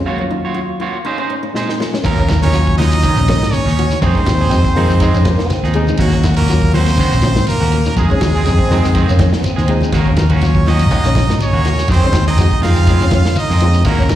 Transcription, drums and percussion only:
1.55 snare soft
1.69 snare soft
1.81 snare medium
1.94 snare medium
2.04 kick loud
2.04 ride bell medium
2.04 low conga medium
2.04 shekere medium
2.18 kick medium
2.29 kick medium
2.29 snare medium
2.29 ride bell medium
2.29 high conga loud
2.29 low conga medium
2.29 shekere medium
2.42 snare soft
2.42 ride bell medium
2.42 high conga medium
2.42 low conga medium
2.42 shekere soft
2.53 ride bell medium
2.53 shekere medium
2.67 kick medium
2.77 snare soft
2.77 open hi-hat medium
2.77 high conga medium
2.77 shekere soft
2.91 ride bell medium
2.91 shekere medium
3.02 kick medium
3.02 ride bell medium
3.02 shekere medium
3.16 shekere medium
3.28 kick medium
3.28 snare medium
3.28 ride bell medium
3.28 high conga loud
3.40 snare medium
3.40 shekere soft
3.52 ride bell medium
3.52 high conga medium
3.52 shekere loud
3.68 snare soft
3.77 ride bell medium
3.77 shekere soft
3.91 shekere medium
4.02 kick loud
4.02 ride bell medium
4.02 low conga medium
4.02 shekere medium
4.15 kick medium
4.26 kick medium
4.26 snare medium
4.26 ride bell medium
4.26 high conga loud
4.26 low conga loud
4.26 shekere medium
4.40 low conga medium
4.40 shekere soft
4.51 snare soft
4.51 ride bell medium
4.51 shekere medium
4.65 kick medium
4.76 open hi-hat medium
4.76 high conga medium
4.76 shekere soft
4.90 shekere medium
5.00 kick medium
5.00 ride bell medium
5.00 shekere medium
5.14 shekere loud
5.25 kick medium
5.25 snare medium
5.25 ride bell medium
5.25 high conga loud
5.38 snare medium
5.38 shekere soft
5.50 snare soft
5.50 ride bell medium
5.50 high conga medium
5.50 shekere medium
5.64 snare soft
5.74 ride bell medium
5.74 shekere soft
5.87 high conga medium
5.87 shekere medium
5.97 kick loud
5.97 ride bell medium
5.97 low conga medium
5.97 shekere medium
6.12 kick medium
6.12 snare soft
6.23 kick medium
6.23 snare medium
6.23 ride bell medium
6.23 high conga loud
6.23 low conga medium
6.23 shekere medium
6.37 snare soft
6.37 ride bell medium
6.37 high conga medium
6.37 low conga medium
6.37 shekere soft
6.48 snare soft
6.48 ride bell medium
6.48 high conga medium
6.48 shekere medium
6.62 kick medium
6.72 open hi-hat medium
6.72 high conga medium
6.72 shekere soft
6.86 snare soft
6.86 ride bell medium
6.86 shekere medium
6.97 kick medium
6.97 ride bell medium
6.97 shekere medium
7.12 shekere loud
7.22 kick medium
7.22 snare medium
7.22 ride bell medium
7.22 high conga loud
7.36 snare medium
7.36 shekere soft
7.47 ride bell medium
7.47 high conga medium
7.47 shekere loud
7.61 snare soft
7.72 ride bell medium
7.72 shekere soft
7.86 shekere medium
7.97 kick loud
7.97 ride bell medium
7.97 low conga medium
7.97 shekere medium
8.10 kick medium
8.21 kick medium
8.21 snare medium
8.21 ride bell soft
8.21 high conga loud
8.21 low conga medium
8.21 shekere medium
8.35 high conga medium
8.35 shekere soft
8.46 ride bell medium
8.46 high conga medium
8.46 shekere medium
8.59 kick medium
8.70 snare soft
8.70 open hi-hat medium
8.70 high conga medium
8.70 shekere soft
8.84 snare soft
8.84 shekere medium
8.95 kick medium
8.95 ride bell medium
8.95 shekere medium
9.09 shekere loud
9.19 kick medium
9.19 snare medium
9.19 ride bell medium
9.19 high conga loud
9.33 snare medium
9.33 shekere soft
9.43 ride bell medium
9.43 high conga medium
9.43 shekere medium
9.58 snare soft
9.68 ride bell medium
9.68 shekere soft
9.81 high conga medium
9.81 shekere medium
9.92 kick loud
9.92 snare soft
9.92 ride bell medium
9.92 low conga medium
9.92 shekere medium
10.06 kick medium
10.16 kick medium
10.16 snare medium
10.16 ride bell medium
10.16 high conga loud
10.16 low conga loud
10.16 shekere medium
10.30 ride bell medium
10.30 high conga medium
10.30 low conga medium
10.30 shekere soft
10.41 ride bell medium
10.41 high conga medium
10.41 shekere medium
10.55 kick medium
10.66 snare soft
10.66 open hi-hat medium
10.66 high conga medium
10.66 shekere soft
10.79 ride bell medium
10.79 shekere medium
10.91 kick medium
10.91 ride bell medium
10.91 shekere medium
11.04 snare soft
11.04 shekere medium
11.15 kick medium
11.15 snare medium
11.15 ride bell medium
11.15 high conga loud
11.29 snare medium
11.29 shekere soft
11.39 ride bell medium
11.39 high conga medium
11.39 shekere loud
11.65 snare soft
11.65 ride bell medium
11.65 shekere soft
11.76 snare soft
11.76 high conga medium
11.76 shekere medium
11.88 kick medium
11.88 ride bell medium
11.88 low conga medium
11.88 shekere medium
12.02 kick medium
12.13 kick medium
12.13 snare medium
12.13 ride bell medium
12.13 high conga loud
12.13 low conga medium
12.13 shekere loud
12.27 snare soft
12.27 shekere soft
12.37 ride bell medium
12.37 high conga medium
12.37 shekere loud
12.51 kick medium
12.62 snare soft
12.62 open hi-hat medium
12.62 high conga medium
12.62 shekere soft
12.76 shekere medium
12.87 kick medium
12.87 ride bell medium
12.87 shekere medium
13.00 snare soft
13.00 shekere medium
13.11 kick medium
13.11 snare medium
13.11 ride bell medium
13.11 high conga loud
13.24 snare medium
13.24 shekere soft
13.35 ride bell medium
13.35 high conga medium
13.35 shekere loud
13.50 snare soft
13.60 ride bell medium
13.60 shekere soft
13.73 shekere medium
13.84 kick loud
13.84 ride bell medium
13.84 low conga medium
13.84 shekere medium
13.99 kick medium
13.99 snare soft
14.09 kick medium
14.09 snare medium
14.09 ride bell medium
14.09 high conga loud
14.09 low conga medium
14.09 shekere medium

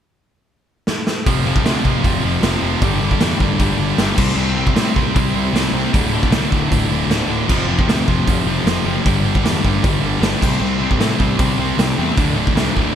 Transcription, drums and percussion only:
0.87 snare medium
1.07 snare medium
1.26 kick loud
1.26 open hi-hat medium
1.56 kick medium
1.66 snare loud
1.66 open hi-hat medium
1.85 kick medium
2.04 kick loud
2.04 open hi-hat medium
2.43 snare loud
2.43 open hi-hat medium
2.82 kick loud
2.82 open hi-hat medium
3.11 kick medium
3.21 snare loud
3.21 open hi-hat medium
3.40 kick medium
3.59 kick loud
3.59 open hi-hat medium
3.98 snare loud
3.98 open hi-hat medium
4.18 kick loud
4.18 crash loud
4.67 kick medium
4.76 snare loud
4.76 open hi-hat medium
4.96 kick medium
5.16 kick loud
5.16 open hi-hat medium
5.56 snare loud
5.56 open hi-hat medium
5.94 kick loud
5.94 open hi-hat medium
6.23 kick medium
6.32 snare loud
6.32 open hi-hat medium
6.52 kick medium
6.72 kick loud
6.72 open hi-hat medium
7.11 snare loud
7.11 open hi-hat medium
7.49 kick loud
7.49 crash loud
7.79 kick medium
7.89 snare loud
7.89 open hi-hat medium
8.08 kick medium
8.28 kick loud
8.28 open hi-hat medium
8.67 snare loud
8.67 open hi-hat medium
9.06 kick loud
9.06 open hi-hat medium
9.35 kick medium
9.46 snare loud
9.46 open hi-hat medium
9.65 kick medium
9.84 kick loud
9.84 open hi-hat medium
10.23 snare loud
10.23 open hi-hat medium
10.42 kick loud
10.42 crash loud
10.91 kick medium
11.01 snare loud
11.01 open hi-hat medium
11.20 kick medium
11.39 kick loud
11.39 open hi-hat medium
11.79 snare loud
11.79 open hi-hat medium
12.18 kick loud
12.18 open hi-hat medium
12.47 kick medium
12.57 snare loud
12.57 open hi-hat medium
12.77 kick medium

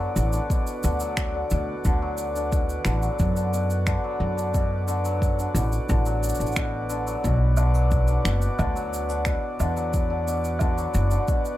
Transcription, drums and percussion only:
0.16 cabasa medium
0.33 cabasa soft
0.50 kick medium
0.50 cabasa medium
0.67 cabasa soft
0.83 cabasa medium
1.00 cabasa medium
1.17 finger snap medium
1.17 kick loud
1.17 cabasa medium
1.51 cabasa medium
1.85 kick loud
1.85 cabasa medium
2.18 cabasa medium
2.36 cabasa medium
2.52 kick medium
2.52 cabasa medium
2.69 cabasa soft
2.85 finger snap medium
2.85 cabasa medium
3.02 cabasa soft
3.19 kick medium
3.19 cabasa medium
3.36 cabasa soft
3.54 cabasa medium
3.70 cabasa soft
3.87 finger snap medium
3.87 kick loud
3.87 cabasa medium
4.38 cabasa soft
4.54 kick medium
4.54 cabasa medium
4.88 cabasa medium
5.05 cabasa soft
5.22 kick medium
5.22 cabasa soft
5.39 cabasa soft
5.56 cabasa medium
5.72 cabasa soft
5.89 kick medium
5.89 cabasa medium
6.06 cabasa soft
6.23 cabasa medium
6.29 cabasa medium
6.35 cabasa medium
6.40 cabasa soft
6.46 cabasa soft
6.52 cabasa soft
6.56 finger snap medium
6.56 kick medium
6.56 cabasa medium
6.90 cabasa medium
7.07 cabasa soft
7.24 kick medium
7.24 cabasa medium
7.57 cabasa medium
7.57 low woodblock medium
7.74 cabasa soft
7.91 kick medium
7.91 cabasa soft
8.08 cabasa soft
8.25 finger snap medium
8.25 cabasa medium
8.42 cabasa medium
8.59 kick medium
8.59 cabasa medium
8.59 low woodblock medium
8.76 cabasa soft
8.93 cabasa medium
9.10 cabasa medium
9.25 finger snap medium
9.25 kick medium
9.25 cabasa medium
9.60 cabasa medium
9.60 low woodblock medium
9.77 cabasa soft
9.93 kick medium
9.93 cabasa medium
10.28 cabasa medium
10.44 cabasa soft
10.59 kick medium
10.59 cabasa medium
10.59 low woodblock medium
10.78 cabasa soft
10.94 cabasa medium
11.11 cabasa soft
11.28 kick medium
11.28 cabasa medium
11.45 cabasa soft

